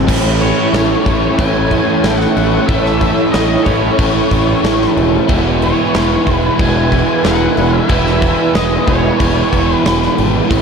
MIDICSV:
0, 0, Header, 1, 7, 480
1, 0, Start_track
1, 0, Key_signature, 4, "major"
1, 0, Tempo, 652174
1, 58, Time_signature, 4, 2, 24, 8
1, 7816, End_track
2, 0, Start_track
2, 0, Title_t, "Lead electric guitar"
2, 0, Program_c, 0, 29
2, 303, Note_on_c, 0, 73, 97
2, 1011, Note_on_c, 0, 80, 107
2, 1040, Note_off_c, 0, 73, 0
2, 1483, Note_off_c, 0, 80, 0
2, 1486, Note_on_c, 0, 78, 92
2, 1961, Note_on_c, 0, 76, 95
2, 1983, Note_off_c, 0, 78, 0
2, 2439, Note_off_c, 0, 76, 0
2, 2442, Note_on_c, 0, 75, 89
2, 2679, Note_off_c, 0, 75, 0
2, 2682, Note_on_c, 0, 73, 91
2, 3616, Note_off_c, 0, 73, 0
2, 4148, Note_on_c, 0, 73, 101
2, 4664, Note_off_c, 0, 73, 0
2, 4664, Note_on_c, 0, 71, 101
2, 4861, Note_on_c, 0, 80, 107
2, 4880, Note_off_c, 0, 71, 0
2, 5335, Note_off_c, 0, 80, 0
2, 5338, Note_on_c, 0, 78, 101
2, 5706, Note_off_c, 0, 78, 0
2, 5706, Note_on_c, 0, 76, 101
2, 5812, Note_off_c, 0, 76, 0
2, 5812, Note_on_c, 0, 76, 94
2, 6288, Note_off_c, 0, 76, 0
2, 6291, Note_on_c, 0, 75, 87
2, 6528, Note_off_c, 0, 75, 0
2, 6531, Note_on_c, 0, 73, 84
2, 7164, Note_off_c, 0, 73, 0
2, 7164, Note_on_c, 0, 71, 84
2, 7465, Note_off_c, 0, 71, 0
2, 7816, End_track
3, 0, Start_track
3, 0, Title_t, "Analog synth pad"
3, 0, Program_c, 1, 89
3, 62, Note_on_c, 1, 69, 88
3, 65, Note_on_c, 1, 73, 76
3, 67, Note_on_c, 1, 64, 76
3, 3862, Note_off_c, 1, 69, 0
3, 3864, Note_off_c, 1, 73, 0
3, 3895, Note_on_c, 1, 71, 71
3, 3897, Note_on_c, 1, 80, 81
3, 7708, Note_off_c, 1, 71, 0
3, 7709, Note_off_c, 1, 80, 0
3, 7710, Note_off_c, 1, 64, 0
3, 7725, Note_on_c, 1, 73, 74
3, 7726, Note_on_c, 1, 69, 89
3, 7727, Note_on_c, 1, 64, 78
3, 7816, Note_off_c, 1, 64, 0
3, 7816, Note_off_c, 1, 69, 0
3, 7816, Note_off_c, 1, 73, 0
3, 7816, End_track
4, 0, Start_track
4, 0, Title_t, "Overdriven electric guitar"
4, 0, Program_c, 2, 29
4, 52, Note_on_c, 2, 45, 97
4, 60, Note_on_c, 2, 52, 109
4, 63, Note_on_c, 2, 57, 107
4, 70, Note_on_c, 2, 61, 107
4, 73, Note_on_c, 2, 64, 111
4, 532, Note_off_c, 2, 52, 0
4, 535, Note_on_c, 2, 52, 70
4, 540, Note_off_c, 2, 57, 0
4, 543, Note_on_c, 2, 57, 77
4, 545, Note_off_c, 2, 61, 0
4, 548, Note_on_c, 2, 61, 84
4, 552, Note_off_c, 2, 64, 0
4, 555, Note_on_c, 2, 64, 83
4, 1012, Note_off_c, 2, 45, 0
4, 1015, Note_on_c, 2, 45, 99
4, 1017, Note_off_c, 2, 52, 0
4, 1018, Note_off_c, 2, 57, 0
4, 1020, Note_on_c, 2, 52, 88
4, 1021, Note_off_c, 2, 61, 0
4, 1027, Note_on_c, 2, 57, 97
4, 1029, Note_off_c, 2, 64, 0
4, 1029, Note_on_c, 2, 61, 98
4, 1032, Note_on_c, 2, 64, 107
4, 1492, Note_off_c, 2, 52, 0
4, 1493, Note_off_c, 2, 57, 0
4, 1495, Note_on_c, 2, 52, 66
4, 1498, Note_off_c, 2, 61, 0
4, 1501, Note_on_c, 2, 57, 70
4, 1507, Note_on_c, 2, 61, 79
4, 1509, Note_off_c, 2, 64, 0
4, 1512, Note_on_c, 2, 64, 88
4, 1733, Note_off_c, 2, 45, 0
4, 1974, Note_on_c, 2, 45, 102
4, 1976, Note_off_c, 2, 52, 0
4, 1978, Note_off_c, 2, 57, 0
4, 1979, Note_on_c, 2, 52, 104
4, 1983, Note_off_c, 2, 61, 0
4, 1987, Note_on_c, 2, 57, 111
4, 1991, Note_on_c, 2, 61, 102
4, 1992, Note_off_c, 2, 64, 0
4, 1995, Note_on_c, 2, 64, 111
4, 2444, Note_off_c, 2, 52, 0
4, 2447, Note_off_c, 2, 57, 0
4, 2447, Note_on_c, 2, 52, 75
4, 2455, Note_off_c, 2, 61, 0
4, 2456, Note_on_c, 2, 57, 77
4, 2464, Note_on_c, 2, 61, 83
4, 2467, Note_off_c, 2, 64, 0
4, 2470, Note_on_c, 2, 64, 90
4, 2692, Note_off_c, 2, 45, 0
4, 2927, Note_on_c, 2, 45, 96
4, 2928, Note_off_c, 2, 52, 0
4, 2930, Note_off_c, 2, 57, 0
4, 2931, Note_on_c, 2, 52, 90
4, 2934, Note_off_c, 2, 61, 0
4, 2939, Note_on_c, 2, 57, 99
4, 2941, Note_off_c, 2, 64, 0
4, 2943, Note_on_c, 2, 61, 105
4, 2944, Note_on_c, 2, 64, 99
4, 3405, Note_off_c, 2, 57, 0
4, 3407, Note_off_c, 2, 52, 0
4, 3410, Note_on_c, 2, 52, 73
4, 3412, Note_off_c, 2, 61, 0
4, 3414, Note_on_c, 2, 57, 75
4, 3421, Note_on_c, 2, 61, 81
4, 3425, Note_off_c, 2, 64, 0
4, 3428, Note_on_c, 2, 64, 80
4, 3648, Note_off_c, 2, 45, 0
4, 3877, Note_off_c, 2, 57, 0
4, 3881, Note_off_c, 2, 61, 0
4, 3882, Note_off_c, 2, 52, 0
4, 3885, Note_on_c, 2, 52, 114
4, 3894, Note_on_c, 2, 56, 113
4, 3899, Note_on_c, 2, 59, 126
4, 3902, Note_off_c, 2, 64, 0
4, 3905, Note_on_c, 2, 64, 121
4, 4371, Note_off_c, 2, 52, 0
4, 4373, Note_on_c, 2, 52, 72
4, 4377, Note_off_c, 2, 56, 0
4, 4380, Note_on_c, 2, 56, 81
4, 4384, Note_off_c, 2, 59, 0
4, 4387, Note_on_c, 2, 59, 84
4, 4389, Note_off_c, 2, 64, 0
4, 4392, Note_on_c, 2, 64, 89
4, 4850, Note_off_c, 2, 52, 0
4, 4853, Note_on_c, 2, 52, 95
4, 4855, Note_off_c, 2, 56, 0
4, 4859, Note_off_c, 2, 59, 0
4, 4864, Note_on_c, 2, 56, 94
4, 4868, Note_on_c, 2, 59, 94
4, 4870, Note_off_c, 2, 64, 0
4, 4873, Note_on_c, 2, 64, 107
4, 5331, Note_off_c, 2, 52, 0
4, 5333, Note_off_c, 2, 56, 0
4, 5334, Note_on_c, 2, 52, 76
4, 5336, Note_off_c, 2, 59, 0
4, 5342, Note_on_c, 2, 56, 80
4, 5344, Note_on_c, 2, 59, 72
4, 5349, Note_off_c, 2, 64, 0
4, 5352, Note_on_c, 2, 64, 85
4, 5811, Note_off_c, 2, 56, 0
4, 5812, Note_off_c, 2, 52, 0
4, 5815, Note_on_c, 2, 52, 107
4, 5820, Note_off_c, 2, 59, 0
4, 5820, Note_on_c, 2, 56, 102
4, 5829, Note_on_c, 2, 59, 108
4, 5830, Note_off_c, 2, 64, 0
4, 5833, Note_on_c, 2, 64, 123
4, 6292, Note_off_c, 2, 52, 0
4, 6293, Note_off_c, 2, 56, 0
4, 6295, Note_on_c, 2, 52, 81
4, 6301, Note_off_c, 2, 59, 0
4, 6302, Note_on_c, 2, 56, 77
4, 6310, Note_on_c, 2, 59, 84
4, 6311, Note_off_c, 2, 64, 0
4, 6314, Note_on_c, 2, 64, 80
4, 6763, Note_off_c, 2, 52, 0
4, 6766, Note_off_c, 2, 56, 0
4, 6766, Note_on_c, 2, 52, 83
4, 6770, Note_off_c, 2, 59, 0
4, 6775, Note_on_c, 2, 56, 90
4, 6778, Note_on_c, 2, 59, 89
4, 6781, Note_off_c, 2, 64, 0
4, 6784, Note_on_c, 2, 64, 100
4, 7241, Note_off_c, 2, 52, 0
4, 7244, Note_off_c, 2, 56, 0
4, 7244, Note_on_c, 2, 52, 82
4, 7247, Note_off_c, 2, 59, 0
4, 7253, Note_on_c, 2, 56, 72
4, 7255, Note_on_c, 2, 59, 70
4, 7259, Note_off_c, 2, 64, 0
4, 7262, Note_on_c, 2, 64, 85
4, 7720, Note_off_c, 2, 56, 0
4, 7722, Note_off_c, 2, 59, 0
4, 7726, Note_on_c, 2, 45, 101
4, 7729, Note_off_c, 2, 52, 0
4, 7732, Note_on_c, 2, 52, 106
4, 7736, Note_on_c, 2, 57, 112
4, 7741, Note_on_c, 2, 61, 109
4, 7744, Note_off_c, 2, 64, 0
4, 7747, Note_on_c, 2, 64, 115
4, 7816, Note_off_c, 2, 45, 0
4, 7816, Note_off_c, 2, 52, 0
4, 7816, Note_off_c, 2, 57, 0
4, 7816, Note_off_c, 2, 61, 0
4, 7816, Note_off_c, 2, 64, 0
4, 7816, End_track
5, 0, Start_track
5, 0, Title_t, "Overdriven electric guitar"
5, 0, Program_c, 3, 29
5, 54, Note_on_c, 3, 45, 88
5, 60, Note_on_c, 3, 52, 96
5, 65, Note_on_c, 3, 57, 95
5, 69, Note_on_c, 3, 61, 101
5, 74, Note_on_c, 3, 64, 90
5, 764, Note_off_c, 3, 64, 0
5, 767, Note_on_c, 3, 64, 88
5, 774, Note_off_c, 3, 61, 0
5, 777, Note_on_c, 3, 61, 80
5, 778, Note_off_c, 3, 57, 0
5, 779, Note_off_c, 3, 52, 0
5, 781, Note_on_c, 3, 57, 76
5, 782, Note_on_c, 3, 52, 80
5, 786, Note_off_c, 3, 45, 0
5, 789, Note_on_c, 3, 45, 71
5, 1959, Note_off_c, 3, 61, 0
5, 1961, Note_off_c, 3, 57, 0
5, 1962, Note_off_c, 3, 45, 0
5, 1970, Note_on_c, 3, 45, 88
5, 1975, Note_off_c, 3, 52, 0
5, 1978, Note_on_c, 3, 52, 84
5, 1982, Note_on_c, 3, 57, 86
5, 1986, Note_on_c, 3, 61, 97
5, 1987, Note_off_c, 3, 64, 0
5, 1989, Note_on_c, 3, 64, 103
5, 2676, Note_off_c, 3, 45, 0
5, 2682, Note_off_c, 3, 57, 0
5, 2683, Note_off_c, 3, 61, 0
5, 2690, Note_off_c, 3, 64, 0
5, 2693, Note_on_c, 3, 64, 88
5, 2696, Note_on_c, 3, 61, 87
5, 2703, Note_on_c, 3, 57, 78
5, 2705, Note_off_c, 3, 52, 0
5, 2708, Note_on_c, 3, 52, 81
5, 2711, Note_on_c, 3, 45, 71
5, 3878, Note_off_c, 3, 61, 0
5, 3881, Note_off_c, 3, 57, 0
5, 3882, Note_on_c, 3, 40, 91
5, 3884, Note_off_c, 3, 45, 0
5, 3887, Note_on_c, 3, 47, 103
5, 3889, Note_off_c, 3, 52, 0
5, 3892, Note_on_c, 3, 52, 94
5, 3896, Note_on_c, 3, 56, 86
5, 3899, Note_off_c, 3, 64, 0
5, 3899, Note_on_c, 3, 59, 107
5, 3901, Note_on_c, 3, 64, 106
5, 4594, Note_off_c, 3, 47, 0
5, 4603, Note_off_c, 3, 64, 0
5, 4606, Note_on_c, 3, 64, 92
5, 4607, Note_off_c, 3, 59, 0
5, 4609, Note_off_c, 3, 56, 0
5, 4610, Note_on_c, 3, 59, 83
5, 4612, Note_on_c, 3, 56, 94
5, 4614, Note_off_c, 3, 52, 0
5, 4617, Note_on_c, 3, 52, 82
5, 4618, Note_off_c, 3, 40, 0
5, 4619, Note_on_c, 3, 47, 78
5, 4621, Note_on_c, 3, 40, 71
5, 5791, Note_off_c, 3, 40, 0
5, 5794, Note_off_c, 3, 47, 0
5, 5796, Note_off_c, 3, 59, 0
5, 5797, Note_off_c, 3, 56, 0
5, 5800, Note_on_c, 3, 40, 97
5, 5802, Note_on_c, 3, 47, 94
5, 5805, Note_off_c, 3, 52, 0
5, 5808, Note_on_c, 3, 52, 91
5, 5811, Note_on_c, 3, 56, 94
5, 5817, Note_off_c, 3, 64, 0
5, 5817, Note_on_c, 3, 59, 101
5, 5820, Note_on_c, 3, 64, 95
5, 6512, Note_off_c, 3, 40, 0
5, 6513, Note_off_c, 3, 47, 0
5, 6516, Note_off_c, 3, 59, 0
5, 6518, Note_off_c, 3, 56, 0
5, 6520, Note_off_c, 3, 64, 0
5, 6523, Note_on_c, 3, 64, 89
5, 6525, Note_on_c, 3, 59, 82
5, 6529, Note_off_c, 3, 52, 0
5, 6529, Note_on_c, 3, 56, 85
5, 6532, Note_on_c, 3, 52, 87
5, 6538, Note_on_c, 3, 47, 77
5, 6543, Note_on_c, 3, 40, 73
5, 7717, Note_off_c, 3, 47, 0
5, 7717, Note_off_c, 3, 59, 0
5, 7719, Note_off_c, 3, 56, 0
5, 7720, Note_on_c, 3, 45, 82
5, 7724, Note_off_c, 3, 52, 0
5, 7726, Note_off_c, 3, 40, 0
5, 7727, Note_on_c, 3, 52, 88
5, 7736, Note_on_c, 3, 57, 89
5, 7739, Note_on_c, 3, 61, 92
5, 7742, Note_off_c, 3, 64, 0
5, 7745, Note_on_c, 3, 64, 90
5, 7816, Note_off_c, 3, 45, 0
5, 7816, Note_off_c, 3, 52, 0
5, 7816, Note_off_c, 3, 57, 0
5, 7816, Note_off_c, 3, 61, 0
5, 7816, Note_off_c, 3, 64, 0
5, 7816, End_track
6, 0, Start_track
6, 0, Title_t, "Fingered electric bass"
6, 0, Program_c, 4, 33
6, 63, Note_on_c, 4, 33, 97
6, 372, Note_off_c, 4, 33, 0
6, 539, Note_on_c, 4, 33, 95
6, 694, Note_off_c, 4, 33, 0
6, 781, Note_on_c, 4, 33, 81
6, 935, Note_off_c, 4, 33, 0
6, 1024, Note_on_c, 4, 33, 103
6, 1332, Note_off_c, 4, 33, 0
6, 1498, Note_on_c, 4, 33, 97
6, 1652, Note_off_c, 4, 33, 0
6, 1740, Note_on_c, 4, 33, 99
6, 1893, Note_off_c, 4, 33, 0
6, 1977, Note_on_c, 4, 33, 98
6, 2286, Note_off_c, 4, 33, 0
6, 2458, Note_on_c, 4, 33, 90
6, 2612, Note_off_c, 4, 33, 0
6, 2699, Note_on_c, 4, 33, 87
6, 2852, Note_off_c, 4, 33, 0
6, 2936, Note_on_c, 4, 33, 101
6, 3090, Note_off_c, 4, 33, 0
6, 3175, Note_on_c, 4, 33, 95
6, 3329, Note_off_c, 4, 33, 0
6, 3414, Note_on_c, 4, 33, 86
6, 3568, Note_off_c, 4, 33, 0
6, 3655, Note_on_c, 4, 28, 100
6, 3809, Note_off_c, 4, 28, 0
6, 3898, Note_on_c, 4, 28, 103
6, 4207, Note_off_c, 4, 28, 0
6, 4378, Note_on_c, 4, 28, 107
6, 4531, Note_off_c, 4, 28, 0
6, 4616, Note_on_c, 4, 28, 86
6, 4770, Note_off_c, 4, 28, 0
6, 4855, Note_on_c, 4, 28, 109
6, 5165, Note_off_c, 4, 28, 0
6, 5340, Note_on_c, 4, 28, 86
6, 5493, Note_off_c, 4, 28, 0
6, 5577, Note_on_c, 4, 28, 95
6, 5731, Note_off_c, 4, 28, 0
6, 5816, Note_on_c, 4, 28, 99
6, 6126, Note_off_c, 4, 28, 0
6, 6293, Note_on_c, 4, 28, 94
6, 6448, Note_off_c, 4, 28, 0
6, 6533, Note_on_c, 4, 28, 89
6, 6689, Note_off_c, 4, 28, 0
6, 6776, Note_on_c, 4, 28, 109
6, 6931, Note_off_c, 4, 28, 0
6, 7016, Note_on_c, 4, 28, 92
6, 7171, Note_off_c, 4, 28, 0
6, 7254, Note_on_c, 4, 28, 88
6, 7410, Note_off_c, 4, 28, 0
6, 7498, Note_on_c, 4, 32, 96
6, 7653, Note_off_c, 4, 32, 0
6, 7736, Note_on_c, 4, 33, 98
6, 7816, Note_off_c, 4, 33, 0
6, 7816, End_track
7, 0, Start_track
7, 0, Title_t, "Drums"
7, 63, Note_on_c, 9, 36, 113
7, 64, Note_on_c, 9, 49, 123
7, 64, Note_on_c, 9, 57, 78
7, 136, Note_off_c, 9, 36, 0
7, 138, Note_off_c, 9, 49, 0
7, 138, Note_off_c, 9, 57, 0
7, 303, Note_on_c, 9, 57, 59
7, 377, Note_off_c, 9, 57, 0
7, 544, Note_on_c, 9, 57, 74
7, 548, Note_on_c, 9, 38, 105
7, 618, Note_off_c, 9, 57, 0
7, 622, Note_off_c, 9, 38, 0
7, 782, Note_on_c, 9, 36, 90
7, 786, Note_on_c, 9, 57, 63
7, 856, Note_off_c, 9, 36, 0
7, 860, Note_off_c, 9, 57, 0
7, 1021, Note_on_c, 9, 36, 124
7, 1024, Note_on_c, 9, 57, 77
7, 1095, Note_off_c, 9, 36, 0
7, 1097, Note_off_c, 9, 57, 0
7, 1259, Note_on_c, 9, 36, 78
7, 1261, Note_on_c, 9, 57, 63
7, 1333, Note_off_c, 9, 36, 0
7, 1334, Note_off_c, 9, 57, 0
7, 1499, Note_on_c, 9, 57, 79
7, 1503, Note_on_c, 9, 38, 109
7, 1572, Note_off_c, 9, 57, 0
7, 1577, Note_off_c, 9, 38, 0
7, 1624, Note_on_c, 9, 38, 34
7, 1698, Note_off_c, 9, 38, 0
7, 1741, Note_on_c, 9, 57, 64
7, 1814, Note_off_c, 9, 57, 0
7, 1978, Note_on_c, 9, 36, 121
7, 1979, Note_on_c, 9, 57, 79
7, 2051, Note_off_c, 9, 36, 0
7, 2053, Note_off_c, 9, 57, 0
7, 2102, Note_on_c, 9, 38, 31
7, 2176, Note_off_c, 9, 38, 0
7, 2216, Note_on_c, 9, 36, 91
7, 2217, Note_on_c, 9, 57, 70
7, 2290, Note_off_c, 9, 36, 0
7, 2290, Note_off_c, 9, 57, 0
7, 2454, Note_on_c, 9, 57, 86
7, 2459, Note_on_c, 9, 38, 113
7, 2528, Note_off_c, 9, 57, 0
7, 2533, Note_off_c, 9, 38, 0
7, 2695, Note_on_c, 9, 57, 62
7, 2696, Note_on_c, 9, 36, 89
7, 2769, Note_off_c, 9, 36, 0
7, 2769, Note_off_c, 9, 57, 0
7, 2935, Note_on_c, 9, 57, 92
7, 2936, Note_on_c, 9, 36, 124
7, 3009, Note_off_c, 9, 36, 0
7, 3009, Note_off_c, 9, 57, 0
7, 3174, Note_on_c, 9, 36, 77
7, 3174, Note_on_c, 9, 57, 65
7, 3248, Note_off_c, 9, 36, 0
7, 3248, Note_off_c, 9, 57, 0
7, 3416, Note_on_c, 9, 57, 82
7, 3421, Note_on_c, 9, 38, 107
7, 3490, Note_off_c, 9, 57, 0
7, 3494, Note_off_c, 9, 38, 0
7, 3542, Note_on_c, 9, 38, 31
7, 3616, Note_off_c, 9, 38, 0
7, 3659, Note_on_c, 9, 57, 63
7, 3733, Note_off_c, 9, 57, 0
7, 3895, Note_on_c, 9, 36, 111
7, 3896, Note_on_c, 9, 57, 83
7, 3969, Note_off_c, 9, 36, 0
7, 3970, Note_off_c, 9, 57, 0
7, 4137, Note_on_c, 9, 57, 65
7, 4210, Note_off_c, 9, 57, 0
7, 4374, Note_on_c, 9, 57, 76
7, 4378, Note_on_c, 9, 38, 107
7, 4448, Note_off_c, 9, 57, 0
7, 4452, Note_off_c, 9, 38, 0
7, 4614, Note_on_c, 9, 36, 91
7, 4617, Note_on_c, 9, 57, 62
7, 4687, Note_off_c, 9, 36, 0
7, 4690, Note_off_c, 9, 57, 0
7, 4852, Note_on_c, 9, 57, 83
7, 4853, Note_on_c, 9, 36, 113
7, 4926, Note_off_c, 9, 57, 0
7, 4927, Note_off_c, 9, 36, 0
7, 5093, Note_on_c, 9, 36, 76
7, 5093, Note_on_c, 9, 57, 61
7, 5167, Note_off_c, 9, 36, 0
7, 5167, Note_off_c, 9, 57, 0
7, 5330, Note_on_c, 9, 57, 77
7, 5335, Note_on_c, 9, 38, 101
7, 5404, Note_off_c, 9, 57, 0
7, 5408, Note_off_c, 9, 38, 0
7, 5571, Note_on_c, 9, 57, 61
7, 5645, Note_off_c, 9, 57, 0
7, 5807, Note_on_c, 9, 57, 83
7, 5812, Note_on_c, 9, 36, 117
7, 5880, Note_off_c, 9, 57, 0
7, 5885, Note_off_c, 9, 36, 0
7, 5934, Note_on_c, 9, 38, 32
7, 6008, Note_off_c, 9, 38, 0
7, 6048, Note_on_c, 9, 57, 66
7, 6052, Note_on_c, 9, 36, 89
7, 6122, Note_off_c, 9, 57, 0
7, 6125, Note_off_c, 9, 36, 0
7, 6291, Note_on_c, 9, 57, 83
7, 6295, Note_on_c, 9, 38, 111
7, 6364, Note_off_c, 9, 57, 0
7, 6369, Note_off_c, 9, 38, 0
7, 6531, Note_on_c, 9, 57, 70
7, 6532, Note_on_c, 9, 36, 88
7, 6605, Note_off_c, 9, 57, 0
7, 6606, Note_off_c, 9, 36, 0
7, 6770, Note_on_c, 9, 57, 91
7, 6772, Note_on_c, 9, 36, 117
7, 6844, Note_off_c, 9, 57, 0
7, 6846, Note_off_c, 9, 36, 0
7, 7012, Note_on_c, 9, 36, 76
7, 7012, Note_on_c, 9, 57, 71
7, 7085, Note_off_c, 9, 57, 0
7, 7086, Note_off_c, 9, 36, 0
7, 7253, Note_on_c, 9, 57, 81
7, 7257, Note_on_c, 9, 38, 101
7, 7327, Note_off_c, 9, 57, 0
7, 7331, Note_off_c, 9, 38, 0
7, 7379, Note_on_c, 9, 38, 31
7, 7452, Note_off_c, 9, 38, 0
7, 7493, Note_on_c, 9, 57, 71
7, 7567, Note_off_c, 9, 57, 0
7, 7732, Note_on_c, 9, 57, 90
7, 7733, Note_on_c, 9, 36, 119
7, 7806, Note_off_c, 9, 57, 0
7, 7807, Note_off_c, 9, 36, 0
7, 7816, End_track
0, 0, End_of_file